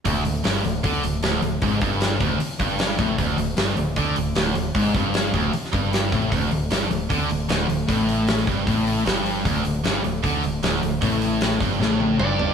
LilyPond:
<<
  \new Staff \with { instrumentName = "Lead electric guitar" } { \time 4/4 \key c \mixolydian \tempo 4 = 153 r1 | r1 | r1 | r1 |
r1 | r1 | r1 | r2. d''4 | }
  \new Staff \with { instrumentName = "Distorted electric guitar" } { \clef bass \time 4/4 \key c \mixolydian d,8 d,8 g,8 d,8 d8 d,8 d,8 d,8 | gis,8 g,4 d,8 r8 g,4 a,8 | d,8 d,8 g,8 d,8 d8 d,8 d,8 d,8 | gis,8 g,4 d,8 r8 g,4 a,8 |
d,8 d,8 g,8 d,8 d8 d,8 d,8 d,8 | a,4. g,8 a,4 g,4 | d,8 d,8 g,8 d,8 d8 d,8 d,8 d,8 | a,4. g,8 a,4 g,4 | }
  \new Staff \with { instrumentName = "Distorted electric guitar" } { \clef bass \time 4/4 \key c \mixolydian d,8 d,8 g,8 d,8 d8 d,8 d,8 d,8 | gis,8 g,4 d,8 r8 g,4 a,8 | d,8 d,8 g,8 d,8 d8 d,8 d,8 d,8 | gis,8 g,4 d,8 r8 g,4 a,8 |
d,8 d,8 g,8 d,8 d8 d,8 d,8 d,8 | a,4. g,8 a,4 g,4 | d,8 d,8 g,8 d,8 d8 d,8 d,8 d,8 | a,4. g,8 a,4 g,4 | }
  \new Staff \with { instrumentName = "Picked electric bass" } { \clef bass \time 4/4 \key c \mixolydian d,,8 d,,8 g,,8 d,,8 d,8 d,,8 d,,8 d,,8 | gis,,8 g,,4 d,,8 r8 g,,4 a,,8 | d,,8 d,,8 g,,8 d,,8 d,8 d,,8 d,,8 d,,8 | gis,,8 g,,4 d,,8 r8 g,,4 a,,8 |
d,,8 d,,8 g,,8 d,,8 d,8 d,,8 d,,8 d,,8 | a,,4. g,,8 a,,4 g,,4 | d,,8 d,,8 g,,8 d,,8 d,8 d,,8 d,,8 d,,8 | a,,4. g,,8 a,,4 g,,4 | }
  \new DrumStaff \with { instrumentName = "Drums" } \drummode { \time 4/4 <hho bd>8 hho8 <hho sn>8 hho8 <hho bd>8 hho8 <hho sn>8 hho8 | <hho bd>8 <hho bd>8 <hho sn>8 <hho bd>8 hho8 <hho bd>8 <hho sn>8 <hho bd>8 | <hho bd>8 hho8 <hho sn>8 hho8 <hho bd>8 hho8 <hho sn>8 hho8 | <hho bd>8 <hho bd>8 <hho sn>8 <hho bd>8 hho16 sn16 <hho bd>8 <hho sn>8 <hho bd>8 |
<hho bd>8 hho8 <hho sn>8 hho8 <hho bd>8 hho8 <hho sn>8 hho8 | <hho bd>8 hho8 <hho sn>8 <hho bd>8 <hho bd>8 hho8 <hho sn>8 hho8 | <hho bd>8 hho8 <hho sn>8 hho8 <hho bd>8 hho8 <hho sn>8 hho8 | <hho bd>8 hho8 <hho sn>8 <hho bd>8 sn8 tommh8 toml8 tomfh8 | }
>>